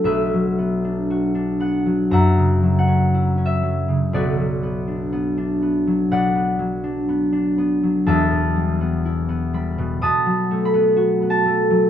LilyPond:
<<
  \new Staff \with { instrumentName = "Harp" } { \time 4/4 \key b \minor \tempo 4 = 61 << { e''4. fis''8 \tuplet 3/2 { ais''4 fis''8~ fis''8 e''4 } | d''2 fis''2 | a''4. b''8 \tuplet 3/2 { dis'''4 b''8~ b''8 a''4 } | } \\ { <fis' b'>2 <e'' fis''>2 | <fis' b'>2 <b' d''>2 | e''2 <a'' b''>2 | } >> }
  \new Staff \with { instrumentName = "Harp" } { \time 4/4 \key b \minor <b,, b, fis d'>16 fis16 b16 d'16 fis'16 d'16 b16 fis16 fis,16 cis16 fis16 cis'16 e'16 cis'16 fis16 cis16 | <b,, b,>16 fis16 b16 d'16 b16 d'16 b16 fis16 b,16 b16 fis16 d'16 b16 d'16 b16 fis16 | <e,, e,>16 b,16 g16 b16 e'16 b16 g16 b,16 b,16 fis16 a16 b16 fis'16 b16 a16 fis16 | }
>>